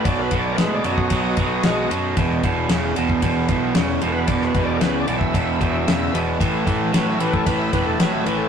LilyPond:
<<
  \new Staff \with { instrumentName = "Tonewheel organ" } { \time 4/4 \key e \major \tempo 4 = 113 << { \tuplet 3/2 { d''8 <ais' b'>8 d''8 <ais' b'>8 d''8 dis''8~ } dis''4.~ dis''16 r16 | r2. \tuplet 3/2 { r4 <ais' b'>8 } | \tuplet 3/2 { d''8 <ais' b'>8 d''8 <ais' b'>8 d''8 e''8~ } e''4.~ e''16 r16 | r4 b'16 e''16 b'16 a'16 b'16 e''16 b'16 a'16 b'16 e''16 b'16 a'16 | } \\ { r4 \tuplet 3/2 { r4 fis'8~ } fis'4. r8 | r1 | r1 | r1 | } >> }
  \new Staff \with { instrumentName = "Overdriven electric guitar" } { \clef bass \time 4/4 \key e \major <b, fis>8 <b, fis>8 <b, gis>8 <b, fis>8 <b, fis>8 <b, fis>8 <b, gis>8 <b, fis>8 | <e, b,>8 <e, b,>8 <e, cis>8 <e, b,>8 <e, b,>8 <e, b,>8 <e, cis>8 <e, b,>8 | <e, b,>8 <e, b,>8 <e, cis>8 <e, b,>8 <e, b,>8 <e, b,>8 <e, cis>8 <e, b,>8 | <a, e>8 <a, e>8 <a, fis>8 <a, e>8 <a, e>8 <a, e>8 <a, fis>8 <a, e>8 | }
  \new Staff \with { instrumentName = "Overdriven electric guitar" } { \clef bass \time 4/4 \key e \major <b, fis>8 <b, fis>8 <b, gis>8 <b, fis>8 <b, fis>8 <b, fis>8 <b, gis>8 <b, fis>8 | <e, b,>8 <e, b,>8 <e, cis>8 <e, b,>8 <e, b,>8 <e, b,>8 <e, cis>8 <e, b,>8 | <e, b,>8 <e, b,>8 <e, cis>8 <e, b,>8 <e, b,>8 <e, b,>8 <e, cis>8 <e, b,>8 | <a, e>8 <a, e>8 <a, fis>8 <a, e>8 <a, e>8 <a, e>8 <a, fis>8 <a, e>8 | }
  \new Staff \with { instrumentName = "Picked electric bass" } { \clef bass \time 4/4 \key e \major b,,8 b,,8 a,8 fis,8 b,,8 b,,8 b,,8 fis,8 | e,,8 e,,8 e,,8 e,,8 e,,8 b,,8 e,,8 e,,8 | e,,8 e,,8 cis,8 b,,8 e,,8 e,,8 e,,8 e,,8 | a,,8 a,,8 a,,8 a,,8 a,,8 e,,8 a,,8 a,,8 | }
  \new DrumStaff \with { instrumentName = "Drums" } \drummode { \time 4/4 <bd cymr>8 <bd cymr>8 <cymr sn>8 cymr16 bd16 <bd cymr>8 <bd cymr>8 <cymr sn>8 cymr8 | <bd cymr>8 <bd cymr>8 <cymr sn>8 cymr16 bd16 <bd cymr>8 <bd cymr>8 <cymr sn>8 cymr8 | <bd cymr>16 sn16 <bd cymr>8 <cymr sn>8 cymr16 bd16 <bd cymr>8 <bd cymr>8 <cymr sn>8 cymr8 | <bd cymr>8 <bd cymr>8 <cymr sn>8 cymr16 bd16 <bd cymr>8 <bd cymr>8 <cymr sn>8 cymr8 | }
>>